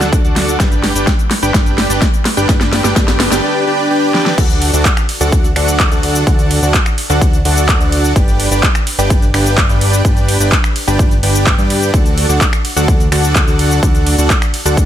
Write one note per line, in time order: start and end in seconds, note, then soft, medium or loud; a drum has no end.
0.00 0.22 D2 medium
0.00 0.22 D4 medium
0.00 0.22 F#4 medium
0.00 0.22 A4 medium
0.00 0.22 D5 medium
0.00 0.22 F#5 loud
0.00 snare medium
0.00 shaker medium
0.13 kick loud
0.13 closed hi-hat medium
0.13 shaker medium
0.24 0.58 D2 loud
0.24 0.57 D4 medium
0.24 0.57 F#4 medium
0.24 0.57 A4 medium
0.24 0.57 D5 medium
0.24 0.57 F#5 medium
0.24 closed hi-hat soft
0.24 shaker soft
0.36 snare medium
0.36 open hi-hat loud
0.48 closed hi-hat soft
0.48 shaker medium
0.60 0.93 G1 medium
0.60 0.93 D4 medium
0.60 0.93 G4 medium
0.60 0.93 B4 medium
0.60 0.93 D5 medium
0.60 0.93 G5 medium
0.60 kick loud
0.60 snare medium
0.60 closed hi-hat medium
0.60 shaker medium
0.72 closed hi-hat soft
0.72 shaker soft
0.84 snare medium
0.84 open hi-hat loud
0.95 1.10 G1 loud
0.95 1.12 D4 medium
0.95 1.12 G4 medium
0.95 1.12 B4 medium
0.95 1.12 D5 medium
0.95 1.12 G5 medium
0.95 closed hi-hat soft
0.95 shaker medium
1.07 kick loud
1.07 snare medium
1.07 closed hi-hat medium
1.07 shaker medium
1.19 closed hi-hat soft
1.19 shaker soft
1.31 snare medium
1.31 open hi-hat loud
1.43 1.52 G1 loud
1.43 1.53 D4 medium
1.43 1.53 G4 medium
1.43 1.53 B4 medium
1.43 1.53 D5 medium
1.43 1.53 G5 loud
1.43 closed hi-hat soft
1.43 shaker medium
1.54 1.87 G1 medium
1.54 1.87 D4 medium
1.54 1.87 G4 medium
1.54 1.87 B4 medium
1.54 1.87 D5 medium
1.54 1.87 G5 medium
1.54 kick loud
1.54 snare medium
1.54 closed hi-hat medium
1.54 shaker medium
1.66 closed hi-hat soft
1.66 shaker soft
1.78 snare medium
1.78 open hi-hat loud
1.90 2.04 G1 loud
1.90 2.07 D4 medium
1.90 2.07 G4 medium
1.90 2.07 B4 medium
1.90 2.07 D5 medium
1.90 2.07 G5 medium
1.90 closed hi-hat soft
1.90 shaker medium
2.02 kick loud
2.02 snare medium
2.02 closed hi-hat medium
2.02 shaker medium
2.14 closed hi-hat soft
2.14 shaker soft
2.25 snare medium
2.25 open hi-hat loud
2.37 2.47 G1 loud
2.37 2.47 D4 medium
2.37 2.47 G4 medium
2.37 2.47 B4 medium
2.37 2.47 D5 medium
2.37 2.47 G5 loud
2.37 shaker medium
2.49 2.82 G1 medium
2.49 2.82 D4 medium
2.49 2.82 G4 medium
2.49 2.82 B4 medium
2.49 2.82 D5 medium
2.49 2.82 G5 loud
2.49 kick loud
2.49 snare medium
2.49 closed hi-hat medium
2.49 shaker medium
2.61 snare medium
2.61 closed hi-hat soft
2.61 shaker soft
2.73 snare medium
2.73 open hi-hat loud
2.84 2.94 G1 loud
2.84 2.94 D4 medium
2.84 2.94 G4 medium
2.84 2.94 B4 medium
2.84 2.94 D5 medium
2.84 2.94 G5 medium
2.84 snare medium
2.84 closed hi-hat soft
2.84 shaker medium
2.96 3.29 G1 loud
2.96 3.29 D4 medium
2.96 3.29 G4 medium
2.96 3.29 B4 medium
2.96 3.29 D5 medium
2.96 3.29 G5 loud
2.96 kick loud
2.96 snare loud
2.96 closed hi-hat medium
2.96 shaker medium
3.08 snare medium
3.08 closed hi-hat soft
3.08 shaker soft
3.20 snare loud
3.20 open hi-hat loud
3.31 3.41 G1 loud
3.31 3.42 D4 medium
3.31 3.42 G4 medium
3.31 3.42 B4 medium
3.31 3.42 D5 medium
3.31 3.42 G5 medium
3.31 snare medium
3.31 closed hi-hat soft
3.31 shaker medium
3.43 3.65 D4 medium
3.43 3.65 G4 medium
3.43 3.65 B4 medium
3.43 3.65 D5 medium
3.43 3.65 G5 loud
3.67 3.89 D4 medium
3.67 3.89 G4 medium
3.67 3.89 B4 medium
3.67 3.89 D5 medium
3.67 3.89 G5 loud
3.91 4.12 D4 loud
3.91 4.12 G4 medium
3.91 4.12 B4 medium
3.91 4.12 D5 medium
3.91 4.12 G5 loud
4.14 4.36 D4 medium
4.14 4.36 G4 medium
4.14 4.36 B4 medium
4.14 4.36 D5 medium
4.14 4.36 G5 loud
4.14 snare medium
4.26 snare medium
4.38 4.71 D2 loud
4.38 4.71 D4 medium
4.38 4.71 F#4 medium
4.38 4.71 A4 medium
4.38 4.71 D5 medium
4.38 4.71 F#5 loud
4.38 kick loud
4.38 closed hi-hat medium
4.38 crash loud
4.38 shaker medium
4.50 closed hi-hat soft
4.50 shaker soft
4.62 open hi-hat loud
4.62 ride medium
4.73 4.88 D2 loud
4.73 4.90 D4 medium
4.73 4.90 F#4 medium
4.73 4.90 A4 medium
4.73 4.90 D5 medium
4.73 4.90 F#5 medium
4.73 closed hi-hat soft
4.73 shaker medium
4.85 kick loud
4.85 clap loud
4.85 closed hi-hat loud
4.85 shaker medium
4.97 finger snap medium
4.97 closed hi-hat soft
4.97 shaker soft
5.09 open hi-hat loud
5.09 ride medium
5.21 5.54 D2 loud
5.21 5.48 D4 loud
5.21 5.48 F#4 medium
5.21 5.48 A4 medium
5.21 5.48 D5 medium
5.21 5.48 F#5 loud
5.21 shaker medium
5.32 kick loud
5.32 closed hi-hat loud
5.32 shaker medium
5.44 closed hi-hat soft
5.44 shaker soft
5.56 5.89 D2 loud
5.56 5.89 D4 medium
5.56 5.89 F#4 medium
5.56 5.89 A4 medium
5.56 5.89 D5 medium
5.56 5.89 F#5 loud
5.56 finger snap medium
5.56 open hi-hat loud
5.56 ride medium
5.68 closed hi-hat soft
5.68 shaker medium
5.80 kick loud
5.80 clap loud
5.80 closed hi-hat loud
5.80 shaker medium
5.91 6.25 D2 loud
5.91 6.24 D4 medium
5.91 6.24 F#4 medium
5.91 6.24 A4 medium
5.91 6.24 D5 medium
5.91 6.24 F#5 medium
5.91 closed hi-hat soft
5.91 shaker soft
6.03 open hi-hat loud
6.03 ride medium
6.15 closed hi-hat soft
6.15 shaker medium
6.27 6.60 D2 loud
6.27 6.60 D4 medium
6.27 6.60 F#4 medium
6.27 6.60 A4 medium
6.27 6.60 D5 medium
6.27 6.60 F#5 loud
6.27 kick loud
6.27 closed hi-hat medium
6.27 shaker medium
6.39 closed hi-hat soft
6.39 shaker soft
6.51 open hi-hat loud
6.51 ride medium
6.62 6.77 D2 loud
6.62 6.79 D4 medium
6.62 6.79 F#4 medium
6.62 6.79 A4 medium
6.62 6.79 D5 medium
6.62 6.79 F#5 medium
6.62 closed hi-hat soft
6.62 shaker medium
6.74 kick loud
6.74 clap loud
6.74 closed hi-hat medium
6.74 shaker medium
6.86 finger snap medium
6.86 closed hi-hat soft
6.86 shaker soft
6.98 open hi-hat loud
6.98 ride medium
7.10 7.43 D2 loud
7.10 7.37 D4 loud
7.10 7.37 F#4 medium
7.10 7.37 A4 medium
7.10 7.37 D5 medium
7.10 7.37 F#5 loud
7.10 closed hi-hat soft
7.10 shaker medium
7.21 kick loud
7.21 closed hi-hat medium
7.21 shaker medium
7.33 closed hi-hat soft
7.33 shaker soft
7.45 7.78 D2 loud
7.45 7.78 D4 medium
7.45 7.78 F#4 medium
7.45 7.78 A4 medium
7.45 7.78 D5 medium
7.45 7.78 F#5 loud
7.45 open hi-hat loud
7.45 ride medium
7.57 closed hi-hat soft
7.57 shaker medium
7.69 kick loud
7.69 clap loud
7.69 closed hi-hat loud
7.69 shaker medium
7.81 8.14 D2 loud
7.81 8.13 D4 medium
7.81 8.13 F#4 medium
7.81 8.13 A4 medium
7.81 8.13 D5 medium
7.81 8.13 F#5 medium
7.81 closed hi-hat soft
7.81 shaker soft
7.92 open hi-hat loud
7.92 ride medium
8.04 closed hi-hat soft
8.04 shaker medium
8.16 8.49 G1 medium
8.16 8.49 D4 medium
8.16 8.49 G4 medium
8.16 8.49 B4 medium
8.16 8.49 D5 medium
8.16 8.49 G5 loud
8.16 kick loud
8.16 closed hi-hat medium
8.16 shaker medium
8.28 closed hi-hat soft
8.28 shaker soft
8.40 open hi-hat loud
8.40 ride medium
8.51 8.66 G1 loud
8.51 8.68 D4 medium
8.51 8.68 G4 medium
8.51 8.68 B4 medium
8.51 8.68 D5 medium
8.51 8.68 G5 loud
8.51 closed hi-hat soft
8.51 shaker medium
8.63 kick loud
8.63 clap loud
8.63 closed hi-hat medium
8.63 shaker medium
8.75 finger snap medium
8.75 closed hi-hat soft
8.75 shaker soft
8.87 open hi-hat loud
8.87 ride medium
8.99 9.32 G1 loud
8.99 9.26 D4 loud
8.99 9.26 G4 medium
8.99 9.26 B4 medium
8.99 9.26 D5 medium
8.99 9.26 G5 loud
8.99 closed hi-hat soft
8.99 shaker medium
9.10 kick loud
9.10 closed hi-hat medium
9.10 shaker medium
9.22 closed hi-hat soft
9.22 shaker soft
9.34 9.67 G1 loud
9.34 9.67 D4 medium
9.34 9.67 G4 medium
9.34 9.67 B4 medium
9.34 9.67 D5 medium
9.34 9.67 G5 loud
9.34 finger snap medium
9.34 open hi-hat loud
9.34 ride medium
9.46 closed hi-hat soft
9.46 shaker medium
9.58 kick loud
9.58 clap loud
9.58 closed hi-hat loud
9.58 shaker medium
9.69 10.03 G1 loud
9.69 10.02 D4 medium
9.69 10.02 G4 medium
9.69 10.02 B4 medium
9.69 10.02 D5 medium
9.69 10.02 G5 medium
9.69 closed hi-hat soft
9.69 shaker soft
9.81 open hi-hat loud
9.81 ride medium
9.93 closed hi-hat soft
9.93 shaker medium
10.05 10.38 G1 loud
10.05 10.37 D4 medium
10.05 10.37 G4 medium
10.05 10.37 B4 medium
10.05 10.37 D5 medium
10.05 10.37 G5 medium
10.05 kick loud
10.05 closed hi-hat medium
10.05 shaker soft
10.17 closed hi-hat soft
10.17 shaker soft
10.28 open hi-hat loud
10.28 ride medium
10.40 10.55 G1 loud
10.40 10.57 D4 medium
10.40 10.57 G4 medium
10.40 10.57 B4 medium
10.40 10.57 D5 medium
10.40 10.57 G5 loud
10.40 closed hi-hat soft
10.40 shaker medium
10.52 kick loud
10.52 clap loud
10.52 closed hi-hat medium
10.52 shaker medium
10.64 finger snap medium
10.64 closed hi-hat soft
10.64 shaker soft
10.76 open hi-hat loud
10.76 ride medium
10.87 11.21 G1 loud
10.87 11.15 D4 loud
10.87 11.14 G4 medium
10.87 11.14 B4 medium
10.87 11.15 D5 medium
10.87 11.14 G5 loud
10.87 closed hi-hat soft
10.87 shaker medium
10.99 kick loud
10.99 closed hi-hat medium
10.99 shaker medium
11.11 closed hi-hat soft
11.11 shaker soft
11.23 11.56 G1 loud
11.23 11.56 D4 medium
11.23 11.56 G4 medium
11.23 11.56 B4 medium
11.23 11.56 D5 medium
11.23 11.56 G5 loud
11.23 open hi-hat loud
11.23 ride medium
11.35 closed hi-hat soft
11.35 shaker medium
11.47 kick loud
11.47 clap loud
11.47 closed hi-hat medium
11.47 shaker medium
11.58 11.91 G2 loud
11.58 11.91 D4 medium
11.58 11.91 G4 medium
11.58 11.91 B4 medium
11.58 11.91 D5 medium
11.58 11.91 G5 medium
11.58 closed hi-hat soft
11.58 shaker soft
11.70 open hi-hat loud
11.70 ride medium
11.82 closed hi-hat soft
11.82 shaker medium
11.94 12.27 D2 medium
11.94 12.26 D4 medium
11.94 12.26 F#4 medium
11.94 12.26 A4 medium
11.94 12.26 D5 medium
11.94 12.26 F#5 loud
11.94 kick loud
11.94 closed hi-hat medium
11.94 shaker medium
12.06 closed hi-hat soft
12.06 shaker soft
12.18 open hi-hat loud
12.18 ride medium
12.29 12.44 D2 medium
12.29 12.46 D4 medium
12.29 12.46 F#4 medium
12.29 12.46 A4 medium
12.29 12.46 D5 medium
12.29 12.46 F#5 loud
12.29 closed hi-hat soft
12.29 shaker medium
12.41 kick loud
12.41 clap loud
12.41 closed hi-hat medium
12.41 shaker medium
12.53 finger snap medium
12.53 closed hi-hat soft
12.53 shaker soft
12.65 open hi-hat loud
12.65 ride medium
12.76 13.10 D2 loud
12.76 13.03 D4 loud
12.76 13.03 F#4 medium
12.76 13.03 A4 medium
12.76 13.03 D5 medium
12.76 13.03 F#5 loud
12.76 closed hi-hat soft
12.76 shaker medium
12.88 kick loud
12.88 closed hi-hat medium
12.88 shaker medium
13.00 closed hi-hat soft
13.00 shaker soft
13.12 13.45 D2 loud
13.12 13.44 D4 medium
13.12 13.44 F#4 medium
13.12 13.44 A4 medium
13.12 13.44 D5 medium
13.12 13.44 F#5 loud
13.12 finger snap medium
13.12 open hi-hat loud
13.12 ride medium
13.24 shaker medium
13.35 kick loud
13.35 clap loud
13.35 closed hi-hat medium
13.35 shaker medium
13.47 13.80 D2 loud
13.47 13.80 D4 medium
13.47 13.80 F#4 medium
13.47 13.80 A4 medium
13.47 13.80 D5 medium
13.47 13.80 F#5 medium
13.47 closed hi-hat soft
13.47 shaker soft
13.59 open hi-hat loud
13.59 ride medium
13.71 closed hi-hat soft
13.71 shaker medium
13.83 14.16 D2 loud
13.83 14.15 D4 medium
13.83 14.15 F#4 medium
13.83 14.15 A4 medium
13.83 14.15 D5 medium
13.83 14.15 F#5 loud
13.83 kick loud
13.83 closed hi-hat medium
13.83 shaker medium
13.95 closed hi-hat soft
13.95 shaker soft
14.06 open hi-hat loud
14.06 ride medium
14.18 14.33 D2 loud
14.18 14.35 D4 medium
14.18 14.35 F#4 medium
14.18 14.35 A4 medium
14.18 14.35 D5 medium
14.18 14.35 F#5 loud
14.18 closed hi-hat soft
14.18 shaker medium
14.30 kick loud
14.30 clap loud
14.30 closed hi-hat medium
14.30 shaker medium
14.42 finger snap medium
14.42 closed hi-hat soft
14.42 shaker soft
14.54 open hi-hat loud
14.54 ride medium
14.65 14.85 D2 loud
14.65 14.85 D4 loud
14.65 14.85 F#4 medium
14.65 14.85 A4 medium
14.65 14.85 D5 medium
14.65 14.85 F#5 loud
14.65 shaker medium
14.77 kick loud
14.77 closed hi-hat loud
14.77 shaker medium